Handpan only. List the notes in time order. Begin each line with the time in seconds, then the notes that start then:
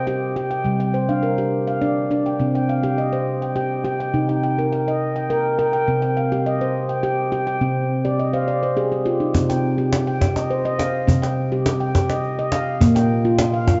0.07 G4 G5
0.36 G4 G5
0.51 G5
0.64 C3 G3
0.80 G5
0.94 C5
1.09 D4 F5
1.23 A#4
1.38 G4
1.67 F5
1.82 D4 D5
2.11 D4 D5
2.26 G5
2.40 C3 C4
2.55 G5
2.69 F5
2.83 G4 G5
2.98 D#5
3.13 C5
3.42 G5
3.56 G4 G5
3.84 G4 G5
4.00 G5
4.14 C3 D#4
4.29 G5
4.43 G5
4.58 A#4
4.73 G5
4.88 D#5
5.16 G5
5.30 A#4 G5
5.59 A#4 G5
5.73 G5
5.88 C3 C4
6.02 G5
6.17 F5
6.32 G4 G5
6.46 D#5
6.61 C5
6.89 G5
7.03 G4 G5
7.32 G4 G5
7.47 G5
7.61 C3 C4
8.05 G4 D5
8.19 D#5
8.33 C5 F5
8.48 D5
8.63 C5
8.77 G4 G#4
8.92 G4
9.06 F4 G4
9.20 D#4
9.34 C3 C4
9.49 G5
9.78 G4
10.07 G5
10.21 G4
10.37 D#5
10.50 C5
10.65 D#5
10.79 F5
11.07 C3 C4
11.22 G5
11.52 G4
11.80 G5
11.95 G4
12.10 D#5
12.39 D#5
12.52 F5
12.81 A#2 A#3
12.95 G5
13.25 F4
13.54 F5
13.68 F4